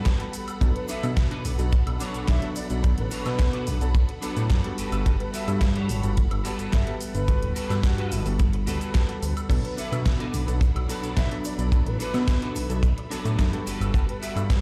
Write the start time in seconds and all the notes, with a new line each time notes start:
Already playing: G3 B3 F#4 G4 A4 B4 F#5 B5
0.05 kick, snare, closed hi-hat, cabasa, shaker
0.19 G3 B3 A4 F#5, closed hi-hat
0.33 open hi-hat, cabasa, shaker
0.48 closed hi-hat, cabasa, high woodblock, shaker
0.60 B1 F#3 B3 D4 A4, kick, closed hi-hat, cabasa, shaker
0.75 B4, closed hi-hat
0.88 D4 F#4 A4 B4 E5, open hi-hat, cabasa, shaker
1.03 B2 F#3 B3 D4 A4, closed hi-hat, cabasa, high woodblock, shaker
1.16 muted clean electric guitar stroke, kick, snare, closed hi-hat, cabasa, shaker
1.30 D4 F#4 A4 B4, closed hi-hat
1.45 B1, open hi-hat, cabasa, shaker
1.58 B1 F#3 B3 D4 A4, closed hi-hat, cabasa, shaker
1.72 kick, closed hi-hat, cabasa, shaker
1.86 B1, muted clean electric guitar stroke, closed hi-hat, high woodblock
2.00 F#3 B3 D4 F#4 A4 C#5, open hi-hat, cabasa, shaker
2.14 B1, closed hi-hat, cabasa, shaker
2.28 B1 E5, kick, snare, closed hi-hat, cabasa, shaker
2.42 F#3 B3 D4 A4, closed hi-hat
2.56 D5, open hi-hat, cabasa, shaker
2.70 B1 D5, closed hi-hat, cabasa, shaker
2.83 F#3 B3 D4 A4, kick, closed hi-hat, cabasa, shaker
2.98 A1 B4, closed hi-hat
3.11 D4 F#4 A4 B4 C#5, open hi-hat, cabasa, shaker
3.25 B2 F#3 B3 D4 A4, snare, closed hi-hat, cabasa, high woodblock, shaker
3.39 muted clean electric guitar stroke, kick, snare, closed hi-hat, cabasa, shaker
3.53 D4 F#4 A4 B4, closed hi-hat
3.67 B1, open hi-hat, cabasa, shaker
3.81 B1 F#3 B3 D4 A4, closed hi-hat, cabasa, shaker
3.95 kick, closed hi-hat, cabasa, shaker
4.08 muted clean electric guitar stroke, closed hi-hat
4.22 F#3 B3 D4 F#4 A4 B4, open hi-hat, cabasa, shaker
4.37 A2, closed hi-hat, cabasa, shaker
4.50 F#2, kick, snare, closed hi-hat, cabasa, shaker
4.64 G3 B3 F#4 A4, closed hi-hat
4.77 G1 F#4 G4 A4 B4, open hi-hat, cabasa, shaker
4.92 G1, closed hi-hat, cabasa, high woodblock, shaker
5.06 G1 G3 B3 A4 F#5, kick, closed hi-hat, cabasa, shaker
5.20 B4, closed hi-hat
5.33 F#4 G4 A4 B4 E5, open hi-hat, cabasa, shaker
5.48 G2 G3 B3 F#4 A4, closed hi-hat, cabasa, high woodblock, shaker
5.61 muted clean electric guitar stroke, kick, snare, closed hi-hat, cabasa, shaker
5.75 F#4 G4 A4 C#5, closed hi-hat
5.89 G1, open hi-hat, cabasa, shaker
6.03 G1 G3 B3 F#4 A4, closed hi-hat, cabasa, shaker
6.17 kick, closed hi-hat, cabasa, shaker
6.30 G1, muted clean electric guitar stroke, closed hi-hat, high woodblock
6.44 G3 B3 F#4 G4 A4 B4 F#5, open hi-hat, cabasa, shaker
6.59 G1, closed hi-hat, cabasa, shaker
6.72 G1 E5, kick, snare, closed hi-hat, cabasa, shaker
6.87 G3 B3 A4 F#5, closed hi-hat
7.01 open hi-hat, cabasa, shaker
7.14 G1 B4, closed hi-hat, cabasa, shaker
7.28 G3 B3 F#4 A4, kick, closed hi-hat, cabasa, shaker
7.42 D1, closed hi-hat
7.55 F#4 G4 A4 B4, open hi-hat, cabasa, shaker
7.70 G2 G3 B3 F#4 A4, snare, closed hi-hat, cabasa, high woodblock, shaker
7.83 F#4, muted clean electric guitar stroke, kick, snare, closed hi-hat, cabasa, shaker
7.97 F#4 G4 A4 B4, closed hi-hat
8.11 G1, open hi-hat, cabasa, shaker
8.26 G1 G3 B3 F#4 A4, open hi-hat, cabasa, shaker
8.39 kick, closed hi-hat, cabasa, shaker
8.52 muted clean electric guitar stroke, closed hi-hat
8.66 D2 G3 B3 F#4 G4 A4 B4 F#5, open hi-hat, cabasa, shaker
8.81 closed hi-hat, cabasa, shaker
8.94 kick, snare, closed hi-hat, cabasa, shaker
9.08 G3 B3 A4 F#5, closed hi-hat
9.23 D2, open hi-hat, cabasa, shaker
9.37 closed hi-hat, cabasa, high woodblock, shaker
9.49 B1 F#3 B3 D4 A4 F#5 B5, kick, closed hi-hat, crash, cabasa, shaker
9.64 B4, closed hi-hat
9.77 D4 F#4 A4 B4 E5, open hi-hat, cabasa, shaker
9.91 B2 F#3 B3 D4 A4, closed hi-hat, cabasa, high woodblock, shaker
10.05 muted clean electric guitar stroke, kick, snare, closed hi-hat, cabasa, shaker
10.19 D4 F#4 A4 B4, closed hi-hat
10.33 B1, open hi-hat, cabasa, shaker
10.47 B1 F#3 B3 D4 A4, closed hi-hat, cabasa, shaker
10.61 kick, closed hi-hat, cabasa, shaker
10.75 B1, muted clean electric guitar stroke, closed hi-hat, high woodblock
10.88 F#3 B3 D4 F#4 A4 B4, open hi-hat, cabasa, shaker
11.03 B1, closed hi-hat, cabasa, shaker
11.17 B1 E5, kick, snare, closed hi-hat, cabasa, shaker
11.31 F#3 B3 D4 A4, closed hi-hat
11.44 D5, open hi-hat, cabasa, shaker
11.59 B1 D5, closed hi-hat, cabasa, shaker
11.72 F#3 B3 D4 A4 E5, kick, closed hi-hat, cabasa, shaker
11.86 A1 B4, closed hi-hat
11.99 D4 F#4 A4 B4, open hi-hat, cabasa, shaker
12.14 B2 F#3 B3 D4 A4, snare, closed hi-hat, cabasa, high woodblock, shaker
12.27 muted clean electric guitar stroke, kick, snare, closed hi-hat, cabasa, shaker
12.41 D4 F#4 A4 B4, closed hi-hat
12.55 B1, open hi-hat, cabasa, shaker
12.69 B1 F#3 B3 D4 A4, closed hi-hat, cabasa, shaker
12.83 kick, closed hi-hat, cabasa, shaker
12.97 muted clean electric guitar stroke, closed hi-hat
13.10 F#3 B3 D4 F#4 A4 B4, open hi-hat, cabasa, shaker
13.25 A2, closed hi-hat, cabasa, shaker
13.39 F#2, kick, snare, closed hi-hat, cabasa, shaker
13.53 G3 B3 F#4 A4, closed hi-hat
13.66 G1 F#4 G4 A4 B4 F#5 B5, open hi-hat, cabasa, shaker
13.80 G1, closed hi-hat, cabasa, high woodblock, shaker
13.94 G1 G3 B3 A4 F#5, kick, closed hi-hat, cabasa, shaker
14.08 B4, closed hi-hat
14.21 F#4 G4 A4 B4 E5, open hi-hat, cabasa, shaker
14.36 G2 G3 B3 F#4 A4, closed hi-hat, cabasa, high woodblock, shaker
14.49 muted clean electric guitar stroke, kick, snare, closed hi-hat, cabasa, shaker